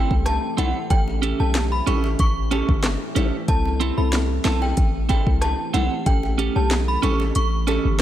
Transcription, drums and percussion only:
0.11 kick
0.26 cross-stick, closed hi-hat, high bongo
0.58 closed hi-hat, low bongo
0.90 kick, closed hi-hat
1.08 high bongo
1.23 closed hi-hat
1.55 snare, clap, closed hi-hat, high bongo
1.87 closed hi-hat, low bongo
2.04 high bongo
2.19 kick, closed hi-hat
2.51 closed hi-hat, high bongo
2.69 kick
2.83 cross-stick, snare, clap, closed hi-hat, high bongo
3.16 closed hi-hat, low bongo
3.48 kick, closed hi-hat
3.65 high bongo
3.81 closed hi-hat
4.12 snare, clap, closed hi-hat, high bongo
4.45 snare, clap, closed hi-hat, low bongo
4.62 high bongo
4.77 kick, closed hi-hat
5.09 kick, closed hi-hat, high bongo
5.27 kick
5.41 cross-stick, closed hi-hat, high bongo
5.74 closed hi-hat, low bongo
6.06 kick, closed hi-hat
6.23 high bongo
6.39 closed hi-hat
6.70 snare, clap, closed hi-hat, high bongo
7.03 closed hi-hat, low bongo
7.20 high bongo
7.35 closed hi-hat
7.67 closed hi-hat, high bongo

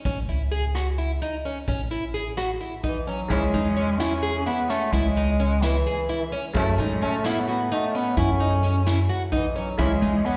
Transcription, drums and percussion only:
0.05 kick, closed hi-hat
0.28 closed hi-hat
0.52 closed hi-hat
0.75 cross-stick, closed hi-hat
0.98 closed hi-hat
1.21 closed hi-hat
1.45 closed hi-hat
1.68 kick, closed hi-hat
1.91 closed hi-hat
2.15 closed hi-hat
2.38 cross-stick, closed hi-hat
2.61 closed hi-hat
2.84 kick, closed hi-hat
3.07 closed hi-hat
3.30 kick, closed hi-hat
3.54 closed hi-hat
3.77 closed hi-hat
4.00 snare, closed hi-hat
4.23 closed hi-hat
4.46 closed hi-hat
4.69 snare, closed hi-hat
4.92 kick, closed hi-hat
5.16 closed hi-hat
5.39 closed hi-hat
5.62 snare, closed hi-hat
5.85 closed hi-hat
6.08 closed hi-hat
6.31 closed hi-hat
6.55 kick, closed hi-hat
6.78 closed hi-hat
7.01 closed hi-hat
7.24 snare, closed hi-hat
7.48 closed hi-hat
7.71 closed hi-hat
7.94 closed hi-hat
8.17 kick, closed hi-hat
8.41 closed hi-hat
8.64 closed hi-hat
8.87 snare, closed hi-hat
9.10 closed hi-hat
9.33 kick, closed hi-hat
9.56 closed hi-hat
9.79 kick, closed hi-hat
10.01 closed hi-hat
10.25 closed hi-hat

